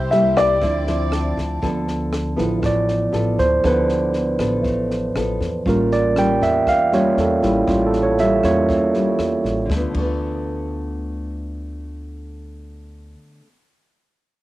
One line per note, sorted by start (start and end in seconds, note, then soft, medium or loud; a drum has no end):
0.00 0.58 C2 medium
0.00 0.59 C3 medium
0.00 1.59 E4 medium
0.00 0.60 G4 medium
0.00 0.60 C5 medium
0.00 0.63 E6 soft
0.11 0.59 G3 medium
0.11 0.60 A#3 medium
0.11 0.60 E4 medium
0.11 0.37 E5 medium
0.11 snare soft
0.36 1.33 D5 medium
0.36 kick soft
0.36 cross-stick medium
0.36 snare soft
0.60 1.33 D2 medium
0.60 1.60 D3 medium
0.60 0.83 F3 soft
0.60 1.61 C4 medium
0.60 0.83 C4 medium
0.60 0.83 E4 medium
0.60 1.61 D5 medium
0.60 kick medium
0.60 snare soft
0.87 1.58 F3 medium
0.87 1.59 C4 medium
0.87 1.59 E4 medium
0.87 snare soft
1.12 1.84 A5 soft
1.12 cross-stick medium
1.12 snare soft
1.37 1.61 D2 medium
1.37 kick soft
1.37 snare soft
1.62 2.34 D2 medium
1.62 2.60 D3 medium
1.62 2.34 F3 soft
1.62 2.34 B3 soft
1.62 2.35 B3 soft
1.62 2.34 F4 medium
1.62 2.34 A4 medium
1.62 kick medium
1.62 snare soft
1.88 snare soft
2.13 cross-stick medium
2.13 snare soft
2.36 3.10 A1 medium
2.36 2.61 F3 soft
2.36 3.09 B3 medium
2.36 2.61 B3 soft
2.36 2.61 E4 soft
2.36 3.09 F4 medium
2.36 3.09 A4 medium
2.36 kick soft
2.36 snare soft
2.62 3.61 A2 medium
2.62 3.36 D5 medium
2.62 kick medium
2.62 cross-stick medium
2.62 snare soft
2.88 snare soft
3.12 3.37 A1 medium
3.12 3.45 B3 soft
3.12 3.46 F4 soft
3.12 3.46 A4 medium
3.12 snare soft
3.38 3.62 D2 medium
3.38 3.64 C5 medium
3.38 kick soft
3.38 snare soft
3.64 4.36 D2 medium
3.64 4.62 D3 medium
3.64 4.36 F3 soft
3.64 4.14 B3 soft
3.64 4.36 B3 soft
3.64 4.15 F4 medium
3.64 4.15 A4 medium
3.64 3.81 B4 medium
3.64 kick soft
3.64 cross-stick medium
3.64 snare soft
3.89 snare soft
4.13 snare soft
4.39 5.11 A1 medium
4.39 5.11 B3 soft
4.39 5.11 F4 medium
4.39 5.11 A4 medium
4.39 kick soft
4.39 cross-stick medium
4.39 snare soft
4.64 5.63 A2 medium
4.64 kick medium
4.64 snare soft
4.91 snare soft
5.15 5.39 A1 medium
5.15 5.48 B3 soft
5.15 5.48 F4 soft
5.15 5.48 A4 soft
5.15 cross-stick medium
5.15 snare soft
5.41 5.64 E2 medium
5.41 kick soft
5.41 snare soft
5.66 6.37 A1 medium
5.66 6.64 A2 medium
5.66 5.98 G3 soft
5.66 6.38 G3 soft
5.66 6.38 A#3 soft
5.66 5.98 C#4 medium
5.66 6.38 C#4 soft
5.66 5.99 F4 medium
5.66 6.38 F4 soft
5.66 5.92 A#4 soft
5.66 kick medium
5.66 snare soft
5.91 6.16 D5 medium
5.91 snare soft
6.16 6.88 G3 medium
6.16 6.88 C#4 medium
6.16 6.88 F4 medium
6.16 6.42 G5 medium
6.16 cross-stick medium
6.16 snare soft
6.41 7.13 E2 medium
6.41 6.66 E5 medium
6.41 kick soft
6.41 snare soft
6.67 6.92 F5 medium
6.67 kick soft
6.67 cross-stick medium
6.67 snare soft
6.92 7.38 G3 medium
6.92 7.15 G3 soft
6.92 7.15 A#3 soft
6.92 7.38 C#4 medium
6.92 7.16 C#4 soft
6.92 7.38 F4 medium
6.92 7.16 F4 soft
6.92 7.17 C#5 medium
6.92 snare soft
7.17 7.41 E2 medium
7.17 7.43 A4 soft
7.17 snare soft
7.42 7.66 A1 medium
7.42 7.64 G3 medium
7.42 7.64 C#4 soft
7.42 7.67 E4 soft
7.42 7.64 F4 medium
7.42 kick soft
7.42 snare soft
7.67 8.39 A1 medium
7.67 8.66 A2 soft
7.67 8.13 G3 medium
7.67 8.14 C#4 medium
7.67 8.14 F4 soft
7.67 7.85 F4 soft
7.67 kick medium
7.67 cross-stick soft
7.67 snare soft
7.87 8.02 A4 soft
7.93 snare soft
8.03 8.18 C#5 medium
8.18 8.69 G3 soft
8.18 8.68 C#4 soft
8.18 8.69 F4 medium
8.18 8.43 E5 medium
8.18 snare soft
8.43 9.15 E2 medium
8.43 8.77 G3 soft
8.43 8.77 A#3 soft
8.43 8.77 C#4 soft
8.43 8.77 F4 soft
8.43 9.54 C#5 medium
8.43 kick soft
8.43 cross-stick soft
8.43 snare soft
8.69 9.65 E3 medium
8.69 kick medium
8.69 snare soft
8.94 9.65 G3 soft
8.94 9.65 C#4 medium
8.94 snare soft
9.19 9.42 E2 medium
9.19 cross-stick medium
9.19 snare soft
9.44 9.68 A1 medium
9.44 kick soft
9.44 snare soft
9.65 9.90 D3 medium
9.70 9.83 D2 medium
9.70 9.96 A3 medium
9.70 kick medium
9.70 snare medium
9.76 10.00 B3 medium
9.80 10.04 F4 medium
9.91 13.14 D2 medium
9.91 13.41 D3 soft
9.91 kick medium
9.91 crash soft
9.97 13.47 A3 medium
10.01 13.51 B3 soft
10.01 13.55 F4 soft